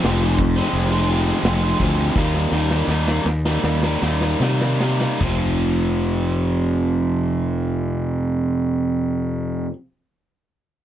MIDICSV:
0, 0, Header, 1, 5, 480
1, 0, Start_track
1, 0, Key_signature, -4, "minor"
1, 0, Tempo, 705882
1, 1460, Time_signature, 4, 2, 24, 8
1, 1461, Tempo, 753769
1, 2901, Tempo, 813008
1, 6701, End_track
2, 0, Start_track
2, 0, Title_t, "Overdriven electric guitar"
2, 0, Program_c, 0, 29
2, 27, Note_on_c, 0, 41, 78
2, 33, Note_on_c, 0, 48, 78
2, 35, Note_on_c, 0, 53, 91
2, 41, Note_on_c, 0, 56, 85
2, 44, Note_on_c, 0, 60, 84
2, 145, Note_off_c, 0, 60, 0
2, 153, Note_on_c, 0, 60, 55
2, 154, Note_off_c, 0, 56, 0
2, 160, Note_off_c, 0, 53, 0
2, 163, Note_on_c, 0, 56, 59
2, 168, Note_on_c, 0, 53, 52
2, 259, Note_off_c, 0, 48, 0
2, 263, Note_off_c, 0, 53, 0
2, 263, Note_off_c, 0, 56, 0
2, 267, Note_off_c, 0, 60, 0
2, 377, Note_off_c, 0, 41, 0
2, 382, Note_on_c, 0, 60, 73
2, 393, Note_on_c, 0, 56, 62
2, 400, Note_on_c, 0, 53, 51
2, 611, Note_off_c, 0, 60, 0
2, 619, Note_off_c, 0, 56, 0
2, 620, Note_on_c, 0, 60, 69
2, 626, Note_off_c, 0, 53, 0
2, 627, Note_on_c, 0, 56, 59
2, 634, Note_on_c, 0, 53, 59
2, 740, Note_off_c, 0, 53, 0
2, 745, Note_on_c, 0, 48, 82
2, 747, Note_off_c, 0, 56, 0
2, 748, Note_on_c, 0, 53, 67
2, 752, Note_off_c, 0, 60, 0
2, 755, Note_on_c, 0, 56, 75
2, 760, Note_on_c, 0, 60, 73
2, 979, Note_off_c, 0, 48, 0
2, 983, Note_off_c, 0, 53, 0
2, 984, Note_on_c, 0, 41, 81
2, 987, Note_on_c, 0, 48, 74
2, 989, Note_off_c, 0, 56, 0
2, 990, Note_off_c, 0, 60, 0
2, 991, Note_on_c, 0, 53, 84
2, 997, Note_on_c, 0, 56, 86
2, 998, Note_on_c, 0, 60, 83
2, 1097, Note_off_c, 0, 60, 0
2, 1105, Note_on_c, 0, 60, 68
2, 1108, Note_off_c, 0, 56, 0
2, 1113, Note_off_c, 0, 53, 0
2, 1116, Note_on_c, 0, 56, 54
2, 1122, Note_on_c, 0, 53, 57
2, 1219, Note_off_c, 0, 48, 0
2, 1227, Note_off_c, 0, 53, 0
2, 1228, Note_on_c, 0, 48, 66
2, 1229, Note_off_c, 0, 56, 0
2, 1232, Note_off_c, 0, 60, 0
2, 1235, Note_on_c, 0, 53, 69
2, 1237, Note_on_c, 0, 56, 78
2, 1240, Note_on_c, 0, 60, 74
2, 1343, Note_off_c, 0, 41, 0
2, 1452, Note_off_c, 0, 48, 0
2, 1455, Note_off_c, 0, 53, 0
2, 1456, Note_off_c, 0, 56, 0
2, 1458, Note_off_c, 0, 60, 0
2, 1468, Note_on_c, 0, 51, 76
2, 1473, Note_on_c, 0, 55, 82
2, 1478, Note_on_c, 0, 58, 82
2, 1483, Note_on_c, 0, 63, 85
2, 1692, Note_off_c, 0, 51, 0
2, 1698, Note_off_c, 0, 55, 0
2, 1700, Note_off_c, 0, 58, 0
2, 1700, Note_on_c, 0, 51, 62
2, 1705, Note_on_c, 0, 55, 56
2, 1707, Note_off_c, 0, 63, 0
2, 1708, Note_on_c, 0, 58, 59
2, 1714, Note_on_c, 0, 63, 69
2, 1811, Note_off_c, 0, 63, 0
2, 1819, Note_on_c, 0, 63, 66
2, 1821, Note_off_c, 0, 58, 0
2, 1825, Note_off_c, 0, 55, 0
2, 1828, Note_on_c, 0, 58, 62
2, 1833, Note_on_c, 0, 55, 51
2, 1926, Note_off_c, 0, 51, 0
2, 1934, Note_off_c, 0, 55, 0
2, 1934, Note_on_c, 0, 51, 77
2, 1937, Note_off_c, 0, 58, 0
2, 1940, Note_off_c, 0, 63, 0
2, 1942, Note_on_c, 0, 55, 79
2, 1944, Note_on_c, 0, 58, 84
2, 1947, Note_on_c, 0, 63, 93
2, 2050, Note_off_c, 0, 63, 0
2, 2056, Note_off_c, 0, 58, 0
2, 2057, Note_on_c, 0, 63, 58
2, 2062, Note_off_c, 0, 55, 0
2, 2064, Note_on_c, 0, 58, 56
2, 2070, Note_on_c, 0, 55, 47
2, 2169, Note_off_c, 0, 51, 0
2, 2173, Note_off_c, 0, 55, 0
2, 2173, Note_off_c, 0, 58, 0
2, 2174, Note_off_c, 0, 63, 0
2, 2293, Note_on_c, 0, 63, 55
2, 2300, Note_on_c, 0, 58, 58
2, 2309, Note_on_c, 0, 55, 56
2, 2530, Note_off_c, 0, 63, 0
2, 2538, Note_on_c, 0, 63, 58
2, 2539, Note_off_c, 0, 58, 0
2, 2545, Note_off_c, 0, 55, 0
2, 2546, Note_on_c, 0, 58, 56
2, 2552, Note_on_c, 0, 55, 49
2, 2654, Note_off_c, 0, 55, 0
2, 2657, Note_on_c, 0, 51, 69
2, 2661, Note_off_c, 0, 58, 0
2, 2662, Note_on_c, 0, 55, 70
2, 2666, Note_off_c, 0, 63, 0
2, 2668, Note_on_c, 0, 58, 68
2, 2673, Note_on_c, 0, 63, 67
2, 2897, Note_off_c, 0, 51, 0
2, 2901, Note_off_c, 0, 55, 0
2, 2904, Note_on_c, 0, 51, 78
2, 2905, Note_off_c, 0, 58, 0
2, 2908, Note_off_c, 0, 63, 0
2, 2908, Note_on_c, 0, 55, 76
2, 2913, Note_on_c, 0, 58, 80
2, 2915, Note_on_c, 0, 63, 90
2, 3013, Note_off_c, 0, 63, 0
2, 3020, Note_on_c, 0, 63, 65
2, 3021, Note_off_c, 0, 58, 0
2, 3026, Note_off_c, 0, 55, 0
2, 3029, Note_on_c, 0, 58, 52
2, 3033, Note_on_c, 0, 55, 58
2, 3130, Note_off_c, 0, 51, 0
2, 3136, Note_off_c, 0, 55, 0
2, 3137, Note_on_c, 0, 51, 60
2, 3141, Note_off_c, 0, 58, 0
2, 3143, Note_on_c, 0, 55, 60
2, 3144, Note_off_c, 0, 63, 0
2, 3148, Note_on_c, 0, 58, 64
2, 3151, Note_on_c, 0, 63, 60
2, 3360, Note_off_c, 0, 51, 0
2, 3363, Note_off_c, 0, 55, 0
2, 3365, Note_off_c, 0, 58, 0
2, 3367, Note_off_c, 0, 63, 0
2, 3370, Note_on_c, 0, 41, 77
2, 3385, Note_on_c, 0, 48, 82
2, 3396, Note_on_c, 0, 53, 78
2, 6021, Note_off_c, 0, 41, 0
2, 6036, Note_off_c, 0, 48, 0
2, 6047, Note_off_c, 0, 53, 0
2, 6701, End_track
3, 0, Start_track
3, 0, Title_t, "Fingered electric bass"
3, 0, Program_c, 1, 33
3, 23, Note_on_c, 1, 29, 83
3, 413, Note_off_c, 1, 29, 0
3, 496, Note_on_c, 1, 29, 72
3, 892, Note_off_c, 1, 29, 0
3, 972, Note_on_c, 1, 29, 74
3, 1173, Note_off_c, 1, 29, 0
3, 1226, Note_on_c, 1, 38, 82
3, 1424, Note_off_c, 1, 38, 0
3, 1466, Note_on_c, 1, 39, 88
3, 1656, Note_off_c, 1, 39, 0
3, 1695, Note_on_c, 1, 39, 82
3, 1889, Note_off_c, 1, 39, 0
3, 1923, Note_on_c, 1, 39, 84
3, 2122, Note_off_c, 1, 39, 0
3, 2163, Note_on_c, 1, 39, 78
3, 2364, Note_off_c, 1, 39, 0
3, 2408, Note_on_c, 1, 39, 74
3, 2610, Note_off_c, 1, 39, 0
3, 2654, Note_on_c, 1, 39, 82
3, 2859, Note_off_c, 1, 39, 0
3, 2894, Note_on_c, 1, 48, 81
3, 3289, Note_off_c, 1, 48, 0
3, 3371, Note_on_c, 1, 29, 76
3, 5998, Note_off_c, 1, 29, 0
3, 6701, End_track
4, 0, Start_track
4, 0, Title_t, "Muted overdriven electric guitar strokes"
4, 268, Note_on_c, 9, 29, 44
4, 336, Note_off_c, 9, 29, 0
4, 2177, Note_on_c, 9, 29, 43
4, 2241, Note_off_c, 9, 29, 0
4, 6701, End_track
5, 0, Start_track
5, 0, Title_t, "Drums"
5, 27, Note_on_c, 9, 42, 56
5, 31, Note_on_c, 9, 38, 89
5, 95, Note_off_c, 9, 42, 0
5, 99, Note_off_c, 9, 38, 0
5, 258, Note_on_c, 9, 42, 55
5, 262, Note_on_c, 9, 36, 83
5, 326, Note_off_c, 9, 42, 0
5, 330, Note_off_c, 9, 36, 0
5, 499, Note_on_c, 9, 42, 62
5, 567, Note_off_c, 9, 42, 0
5, 741, Note_on_c, 9, 42, 56
5, 809, Note_off_c, 9, 42, 0
5, 982, Note_on_c, 9, 42, 56
5, 986, Note_on_c, 9, 38, 94
5, 1050, Note_off_c, 9, 42, 0
5, 1054, Note_off_c, 9, 38, 0
5, 1223, Note_on_c, 9, 36, 82
5, 1224, Note_on_c, 9, 42, 61
5, 1291, Note_off_c, 9, 36, 0
5, 1292, Note_off_c, 9, 42, 0
5, 1467, Note_on_c, 9, 36, 93
5, 1470, Note_on_c, 9, 38, 48
5, 1530, Note_off_c, 9, 36, 0
5, 1533, Note_off_c, 9, 38, 0
5, 1584, Note_on_c, 9, 38, 46
5, 1647, Note_off_c, 9, 38, 0
5, 1699, Note_on_c, 9, 38, 50
5, 1762, Note_off_c, 9, 38, 0
5, 1815, Note_on_c, 9, 38, 50
5, 1879, Note_off_c, 9, 38, 0
5, 1931, Note_on_c, 9, 38, 57
5, 1995, Note_off_c, 9, 38, 0
5, 2051, Note_on_c, 9, 38, 55
5, 2115, Note_off_c, 9, 38, 0
5, 2169, Note_on_c, 9, 38, 63
5, 2233, Note_off_c, 9, 38, 0
5, 2291, Note_on_c, 9, 38, 59
5, 2354, Note_off_c, 9, 38, 0
5, 2410, Note_on_c, 9, 38, 69
5, 2473, Note_off_c, 9, 38, 0
5, 2530, Note_on_c, 9, 38, 64
5, 2594, Note_off_c, 9, 38, 0
5, 2654, Note_on_c, 9, 38, 66
5, 2718, Note_off_c, 9, 38, 0
5, 2775, Note_on_c, 9, 38, 57
5, 2839, Note_off_c, 9, 38, 0
5, 2907, Note_on_c, 9, 38, 74
5, 2966, Note_off_c, 9, 38, 0
5, 3018, Note_on_c, 9, 38, 55
5, 3077, Note_off_c, 9, 38, 0
5, 3134, Note_on_c, 9, 38, 84
5, 3193, Note_off_c, 9, 38, 0
5, 3252, Note_on_c, 9, 38, 62
5, 3311, Note_off_c, 9, 38, 0
5, 3372, Note_on_c, 9, 36, 74
5, 3373, Note_on_c, 9, 43, 80
5, 3373, Note_on_c, 9, 52, 68
5, 3431, Note_off_c, 9, 36, 0
5, 3432, Note_off_c, 9, 43, 0
5, 3432, Note_off_c, 9, 52, 0
5, 6701, End_track
0, 0, End_of_file